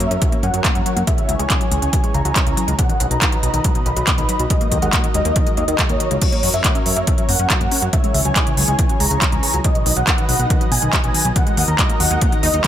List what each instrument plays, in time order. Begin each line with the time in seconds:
0.00 analog synth bass F#2, synth pluck A#3, analog synth pad C#4 A#4 C#5, supersaw synth E5, closed hi-hat
0.11 analog synth bass F#2, analog synth pad F#3 C#4 A#4 C#5, synth pluck C#4, closed hi-hat
0.22 synth pluck F#3, analog synth pad F#3 C#4 A#4 C#5, kick, closed hi-hat
0.32 synth pluck A#3, closed hi-hat
0.43 analog synth bass F#2, synth pluck C#4, supersaw synth F#5, closed hi-hat
0.54 analog synth bass F#2, synth pluck F#3, analog synth pad F#3 C#4 A#4 C#5, closed hi-hat
0.64 synth pluck A#3, kick, clap, closed hi-hat
0.75 analog synth bass F#2, analog synth pad F#3 C#4 A#4 C#5, synth pluck C#4, supersaw synth F#5, closed hi-hat
0.86 synth pluck F#3, closed hi-hat
0.97 analog synth bass F#2, synth pluck A#3, closed hi-hat
1.07 analog synth pad E3 C#4 G#4 C#5, synth pluck G#3, supersaw synth E5, kick, closed hi-hat
1.18 synth pluck C#3, analog synth pad E3 C#4 G#4 C#5, closed hi-hat
1.29 analog synth bass C#2, analog synth pad E3 C#4 G#4 C#5, synth pluck F#3, closed hi-hat
1.39 analog synth bass C#2, synth pluck G#3, supersaw synth G#5, closed hi-hat
1.50 synth pluck C#3, analog synth pad E3 C#4 G#4 C#5, kick, clap, closed hi-hat
1.61 analog synth pad E3 C#4 G#4 C#5, synth pluck F#3, closed hi-hat
1.71 analog synth bass C#2, analog synth pad E3 C#4 G#4 C#5, synth pluck G#3, supersaw synth G#5, closed hi-hat
1.82 analog synth bass C#2, synth pluck C#3, analog synth pad E3 C#4 G#4 C#5, closed hi-hat
1.93 analog synth pad E3 C#4 G#4 C#5, synth pluck F#3, kick, closed hi-hat
2.04 synth pluck G#3, closed hi-hat
2.14 analog synth bass C#2, synth pluck C#3, supersaw synth A#5, closed hi-hat
2.25 analog synth bass C#2, analog synth pad E3 C#4 G#4 C#5, synth pluck F#3, closed hi-hat
2.36 synth pluck G#3, kick, clap, closed hi-hat
2.46 analog synth bass C#2, synth pluck C#3, analog synth pad E3 C#4 G#4 C#5, supersaw synth A#5, closed hi-hat
2.57 synth pluck F#3, closed hi-hat
2.68 analog synth bass C#2, synth pluck G#3, closed hi-hat
2.79 synth pluck B2, analog synth pad F#3 D#4 B4 D#5, supersaw synth F#5, kick, closed hi-hat
2.89 synth pluck D#3, analog synth pad F#3 D#4 B4 D#5, closed hi-hat
3.00 analog synth bass B1, synth pluck F#3, analog synth pad F#3 D#4 B4 D#5, closed hi-hat
3.11 analog synth bass B1, synth pluck B2, supersaw synth A#5, closed hi-hat
3.21 synth pluck D#3, analog synth pad F#3 D#4 B4 D#5, kick, clap, closed hi-hat
3.32 synth pluck F#3, analog synth pad F#3 D#4 B4 D#5, closed hi-hat
3.43 analog synth bass B1, synth pluck B2, analog synth pad F#3 D#4 B4 D#5, supersaw synth A#5, closed hi-hat
3.54 analog synth bass B1, synth pluck D#3, analog synth pad F#3 D#4 B4 D#5, closed hi-hat
3.64 synth pluck F#3, analog synth pad F#3 D#4 B4 D#5, kick, closed hi-hat
3.75 synth pluck B2, closed hi-hat
3.86 analog synth bass B1, synth pluck D#3, supersaw synth B5, closed hi-hat
3.96 analog synth bass B1, analog synth pad F#3 D#4 B4 D#5, synth pluck F#3, closed hi-hat
4.07 synth pluck B2, kick, clap, closed hi-hat
4.18 analog synth bass B1, synth pluck D#3, analog synth pad F#3 D#4 B4 D#5, supersaw synth B5, closed hi-hat
4.29 synth pluck F#3, closed hi-hat
4.39 analog synth bass B1, synth pluck B2, closed hi-hat
4.50 analog synth pad F#3 D#4 A#4 D#5, synth pluck G#3, supersaw synth D#5, kick, closed hi-hat
4.61 analog synth pad F#3 D#4 A#4 D#5, synth pluck A#3, closed hi-hat
4.72 analog synth bass D#2, synth pluck D#3, analog synth pad F#3 D#4 A#4 D#5, kick, closed hi-hat
4.82 analog synth bass D#2, synth pluck G#3, supersaw synth F#5, closed hi-hat
4.93 analog synth pad F#3 D#4 A#4 D#5, synth pluck A#3, kick, clap, closed hi-hat
5.04 synth pluck D#3, analog synth pad F#3 D#4 A#4 D#5, closed hi-hat
5.14 analog synth bass D#2, analog synth pad F#3 D#4 A#4 D#5, synth pluck G#3, supersaw synth D#5, closed hi-hat
5.25 analog synth bass D#2, analog synth pad F#3 D#4 A#4 D#5, synth pluck A#3, closed hi-hat
5.36 synth pluck D#3, analog synth pad F#3 D#4 A#4 D#5, kick, closed hi-hat
5.47 synth pluck G#3, closed hi-hat
5.57 analog synth bass D#2, synth pluck A#3, supersaw synth D#5, closed hi-hat
5.68 analog synth bass D#2, synth pluck D#3, analog synth pad F#3 D#4 A#4 D#5, closed hi-hat
5.79 synth pluck G#3, kick, clap, closed hi-hat
5.89 analog synth bass D#2, analog synth pad F#3 D#4 A#4 D#5, synth pluck A#3, supersaw synth C#5, closed hi-hat
6.00 synth pluck D#3, closed hi-hat
6.11 analog synth bass C#2, synth pluck G#3, closed hi-hat
6.22 synth pluck F#3, analog synth pad F#3 C#4 A#4 C#5, supersaw synth C#5, kick, closed hi-hat, crash
6.32 analog synth pad F#3 C#4 A#4 C#5, synth pluck A#3, closed hi-hat
6.43 analog synth bass F#2, analog synth pad F#3 C#4 A#4 C#5, synth pluck C#4, open hi-hat
6.54 analog synth bass F#2, synth pluck F#3, supersaw synth E5, closed hi-hat
6.64 analog synth pad F#3 C#4 A#4 C#5, synth pluck A#3, kick, clap, closed hi-hat
6.75 analog synth pad F#3 C#4 A#4 C#5, synth pluck C#4, closed hi-hat
6.86 analog synth bass F#2, synth pluck F#3, analog synth pad F#3 C#4 A#4 C#5, supersaw synth E5, open hi-hat
6.97 analog synth bass F#2, analog synth pad F#3 C#4 A#4 C#5, synth pluck A#3, closed hi-hat
7.07 analog synth pad F#3 C#4 A#4 C#5, synth pluck C#4, kick, closed hi-hat
7.18 synth pluck F#3, closed hi-hat
7.29 analog synth bass F#2, synth pluck A#3, supersaw synth F#5, open hi-hat
7.39 analog synth bass F#2, analog synth pad F#3 C#4 A#4 C#5, synth pluck C#4, closed hi-hat
7.50 synth pluck F#3, kick, clap, closed hi-hat
7.61 analog synth bass F#2, analog synth pad F#3 C#4 A#4 C#5, synth pluck A#3, supersaw synth F#5, closed hi-hat
7.71 synth pluck C#4, open hi-hat
7.82 analog synth bass F#2, synth pluck F#3, closed hi-hat
7.93 analog synth pad E3 C#4 G#4 C#5, synth pluck F#3, supersaw synth E5, kick, closed hi-hat
8.04 analog synth pad E3 C#4 G#4 C#5, synth pluck G#3, closed hi-hat
8.14 analog synth bass C#2, synth pluck C#3, analog synth pad E3 C#4 G#4 C#5, open hi-hat
8.25 analog synth bass C#2, synth pluck F#3, supersaw synth G#5, closed hi-hat
8.36 analog synth pad E3 C#4 G#4 C#5, synth pluck G#3, kick, clap, closed hi-hat
8.47 synth pluck C#3, analog synth pad E3 C#4 G#4 C#5, closed hi-hat
8.57 analog synth bass C#2, analog synth pad E3 C#4 G#4 C#5, synth pluck F#3, supersaw synth G#5, open hi-hat
8.68 analog synth bass C#2, analog synth pad E3 C#4 G#4 C#5, synth pluck G#3, closed hi-hat
8.79 synth pluck C#3, analog synth pad E3 C#4 G#4 C#5, kick, closed hi-hat
8.89 synth pluck F#3, closed hi-hat
9.00 analog synth bass C#2, synth pluck G#3, supersaw synth A#5, open hi-hat
9.11 analog synth bass C#2, synth pluck C#3, analog synth pad E3 C#4 G#4 C#5, closed hi-hat
9.22 synth pluck F#3, kick, clap, closed hi-hat
9.32 analog synth bass C#2, analog synth pad E3 C#4 G#4 C#5, synth pluck G#3, supersaw synth A#5, closed hi-hat
9.43 synth pluck C#3, open hi-hat
9.54 analog synth bass C#2, synth pluck F#3, closed hi-hat
9.64 analog synth pad F#3 D#4 B4 D#5, synth pluck F#3, supersaw synth D#5, kick, closed hi-hat
9.75 synth pluck B2, analog synth pad F#3 D#4 B4 D#5, closed hi-hat
9.86 analog synth bass B1, synth pluck D#3, analog synth pad F#3 D#4 B4 D#5, open hi-hat
9.97 analog synth bass B1, synth pluck F#3, supersaw synth F#5, closed hi-hat
10.07 synth pluck B2, analog synth pad F#3 D#4 B4 D#5, kick, clap, closed hi-hat
10.18 synth pluck D#3, analog synth pad F#3 D#4 B4 D#5, closed hi-hat
10.29 analog synth bass B1, analog synth pad F#3 D#4 B4 D#5, synth pluck F#3, supersaw synth F#5, open hi-hat
10.39 analog synth bass B1, synth pluck B2, analog synth pad F#3 D#4 B4 D#5, closed hi-hat
10.50 synth pluck D#3, analog synth pad F#3 D#4 B4 D#5, kick, closed hi-hat
10.61 synth pluck F#3, closed hi-hat
10.72 analog synth bass B1, synth pluck B2, supersaw synth G#5, open hi-hat
10.82 analog synth bass B1, synth pluck D#3, analog synth pad F#3 D#4 B4 D#5, closed hi-hat
10.93 synth pluck F#3, kick, clap, closed hi-hat
11.04 analog synth bass B1, synth pluck B2, analog synth pad F#3 D#4 B4 D#5, supersaw synth G#5, closed hi-hat
11.14 synth pluck D#3, open hi-hat
11.25 analog synth bass B1, synth pluck F#3, closed hi-hat
11.36 synth pluck D#3, analog synth pad F#3 D#4 A#4 D#5, supersaw synth F#5, kick, closed hi-hat
11.47 analog synth pad F#3 D#4 A#4 D#5, synth pluck G#3, closed hi-hat
11.57 analog synth bass D#2, analog synth pad F#3 D#4 A#4 D#5, synth pluck A#3, open hi-hat
11.68 analog synth bass D#2, synth pluck D#3, supersaw synth A#5, closed hi-hat
11.79 analog synth pad F#3 D#4 A#4 D#5, synth pluck G#3, kick, clap, closed hi-hat
11.89 analog synth pad F#3 D#4 A#4 D#5, synth pluck A#3, closed hi-hat
12.00 analog synth bass D#2, synth pluck D#3, analog synth pad F#3 D#4 A#4 D#5, supersaw synth F#5, open hi-hat
12.11 analog synth bass D#2, analog synth pad F#3 D#4 A#4 D#5, synth pluck G#3, closed hi-hat
12.21 analog synth pad F#3 D#4 A#4 D#5, synth pluck A#3, kick, closed hi-hat
12.32 synth pluck D#3, closed hi-hat
12.43 analog synth bass D#2, synth pluck D#4, supersaw synth D#5, open hi-hat
12.54 analog synth bass D#2, analog synth pad F#3 D#4 A#4 D#5, synth pluck D#4, closed hi-hat